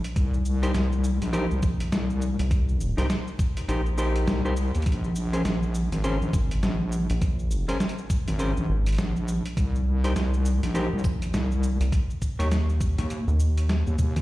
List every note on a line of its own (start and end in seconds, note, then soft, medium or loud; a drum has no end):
0.04 closed hi-hat medium
0.04 shaker soft
0.16 0.73 C2 medium
0.16 kick loud
0.16 closed hi-hat medium
0.16 shaker soft
0.34 shaker soft
0.45 shaker medium
0.62 0.71 D#4 medium
0.62 0.71 G4 medium
0.62 0.71 A#4 medium
0.62 0.71 C5 medium
0.62 closed hi-hat medium
0.62 shaker soft
0.74 1.19 C2 loud
0.74 snare loud
0.74 closed hi-hat medium
0.74 shaker soft
0.92 shaker soft
1.04 shaker medium
1.21 1.48 A#1 medium
1.21 snare soft
1.21 closed hi-hat medium
1.21 shaker soft
1.33 1.45 D#4 medium
1.33 1.45 G4 medium
1.33 1.45 A#4 medium
1.33 1.45 C5 loud
1.33 closed hi-hat medium
1.33 shaker soft
1.51 1.61 C2 loud
1.51 shaker soft
1.63 1.90 A#1 medium
1.63 kick loud
1.63 shaker medium
1.80 closed hi-hat medium
1.80 shaker soft
1.92 2.36 C2 loud
1.92 snare loud
1.92 closed hi-hat medium
1.92 shaker soft
2.10 shaker soft
2.22 shaker medium
2.39 2.95 C2 loud
2.39 closed hi-hat medium
2.39 shaker soft
2.51 kick loud
2.51 closed hi-hat medium
2.51 shaker soft
2.69 shaker soft
2.81 shaker medium
2.97 3.08 C2 loud
2.97 3.06 D#4 medium
2.97 3.06 G4 medium
2.97 3.06 A#4 medium
2.97 3.06 C5 medium
2.97 snare soft
2.97 closed hi-hat medium
2.97 shaker soft
3.10 snare loud
3.10 closed hi-hat medium
3.10 shaker soft
3.28 shaker soft
3.39 kick loud
3.39 shaker medium
3.57 closed hi-hat medium
3.57 shaker soft
3.68 4.26 A#1 loud
3.68 3.81 D#4 medium
3.68 3.81 G4 medium
3.68 3.81 A#4 medium
3.68 3.81 C5 loud
3.68 closed hi-hat medium
3.68 shaker soft
3.86 shaker soft
3.98 4.41 D#4 medium
3.98 4.41 G4 medium
3.98 4.41 A#4 medium
3.98 4.41 C5 loud
3.98 shaker medium
4.16 closed hi-hat medium
4.27 4.72 C2 loud
4.27 snare loud
4.27 closed hi-hat medium
4.27 shaker soft
4.45 4.53 D#4 medium
4.45 4.53 G4 medium
4.45 4.53 A#4 medium
4.45 4.53 C5 medium
4.45 shaker soft
4.57 shaker medium
4.74 4.84 D#2 medium
4.74 closed hi-hat soft
4.74 shaker soft
4.82 closed hi-hat soft
4.86 5.43 A#1 medium
4.86 kick loud
4.86 closed hi-hat medium
4.86 shaker soft
4.92 closed hi-hat medium
5.04 shaker soft
5.16 shaker medium
5.33 5.41 C#4 medium
5.33 5.41 G#4 medium
5.33 5.41 A#4 medium
5.33 5.41 C5 medium
5.33 closed hi-hat medium
5.33 shaker soft
5.44 5.89 A#1 loud
5.44 snare loud
5.44 closed hi-hat soft
5.44 shaker soft
5.63 shaker soft
5.75 shaker medium
5.92 6.19 G#1 loud
5.92 snare soft
5.92 closed hi-hat medium
5.92 shaker soft
6.04 6.16 C#4 medium
6.04 6.16 G#4 medium
6.04 6.16 A#4 medium
6.04 6.16 C5 medium
6.04 closed hi-hat medium
6.04 shaker soft
6.21 6.31 A#1 loud
6.21 shaker soft
6.33 6.61 G#1 medium
6.33 kick loud
6.33 shaker medium
6.51 closed hi-hat medium
6.51 shaker soft
6.63 7.07 A#1 loud
6.63 snare loud
6.63 closed hi-hat medium
6.63 shaker soft
6.92 shaker medium
7.10 7.66 A#1 loud
7.10 closed hi-hat medium
7.10 shaker soft
7.22 kick loud
7.22 closed hi-hat medium
7.22 shaker soft
7.39 shaker soft
7.51 shaker medium
7.68 7.77 C#4 medium
7.68 7.77 G#4 medium
7.68 7.77 A#4 medium
7.68 7.77 C5 medium
7.68 snare soft
7.68 closed hi-hat medium
7.68 shaker soft
7.80 snare loud
7.80 shaker soft
7.89 closed hi-hat medium
7.98 shaker soft
8.10 kick loud
8.10 shaker medium
8.27 8.54 G#1 medium
8.27 closed hi-hat medium
8.27 shaker soft
8.39 8.51 C#4 medium
8.39 8.51 G#4 medium
8.39 8.51 A#4 medium
8.39 8.51 C5 medium
8.39 closed hi-hat medium
8.39 shaker soft
8.57 8.67 A#1 loud
8.57 shaker soft
8.69 8.96 G#1 loud
8.86 closed hi-hat medium
8.86 shaker soft
8.89 closed hi-hat soft
8.92 closed hi-hat soft
8.94 closed hi-hat soft
8.96 9.42 A#1 loud
8.96 snare loud
8.96 closed hi-hat soft
8.98 closed hi-hat medium
8.98 shaker soft
9.16 shaker soft
9.28 shaker medium
9.46 closed hi-hat medium
9.57 10.14 C2 loud
9.57 kick loud
9.57 closed hi-hat medium
9.57 shaker soft
9.75 shaker soft
10.04 10.12 D#4 medium
10.04 10.12 G4 medium
10.04 10.12 A#4 medium
10.04 10.12 C5 medium
10.04 closed hi-hat medium
10.04 shaker soft
10.16 10.60 C2 loud
10.16 snare loud
10.16 closed hi-hat soft
10.16 shaker soft
10.34 shaker soft
10.46 shaker medium
10.63 10.90 A#1 loud
10.63 snare soft
10.63 closed hi-hat medium
10.63 shaker soft
10.74 10.87 D#4 medium
10.74 10.87 G4 medium
10.74 10.87 A#4 medium
10.74 10.87 C5 medium
10.74 closed hi-hat medium
10.74 shaker soft
10.93 11.02 C2 loud
10.98 shaker soft
11.04 11.32 A#1 loud
11.04 kick loud
11.04 shaker medium
11.22 closed hi-hat medium
11.22 shaker soft
11.34 11.78 C2 loud
11.34 snare loud
11.34 closed hi-hat medium
11.34 shaker soft
11.52 shaker soft
11.63 shaker medium
11.80 11.90 C2 loud
11.80 closed hi-hat medium
11.80 shaker soft
11.92 kick loud
11.92 closed hi-hat medium
11.92 shaker soft
12.10 shaker soft
12.22 kick medium
12.22 shaker medium
12.39 12.95 D#2 loud
12.39 12.47 D#4 medium
12.39 12.47 G4 medium
12.39 12.47 A#4 medium
12.39 12.47 C#5 medium
12.39 snare soft
12.39 closed hi-hat medium
12.39 shaker soft
12.52 snare loud
12.52 closed hi-hat medium
12.52 shaker soft
12.69 shaker soft
12.81 kick loud
12.81 shaker medium
12.98 13.25 D#2 loud
12.98 snare soft
12.98 closed hi-hat medium
12.98 shaker soft
13.10 closed hi-hat medium
13.10 shaker soft
13.28 13.84 D#2 loud
13.28 shaker soft
13.40 shaker medium
13.58 closed hi-hat medium
13.58 shaker soft
13.69 snare loud
13.69 closed hi-hat medium
13.87 13.96 D#2 medium
13.87 shaker soft
13.99 14.22 D#2 loud
13.99 high tom medium
13.99 shaker medium
14.16 closed hi-hat medium
14.16 mid tom medium
14.16 shaker soft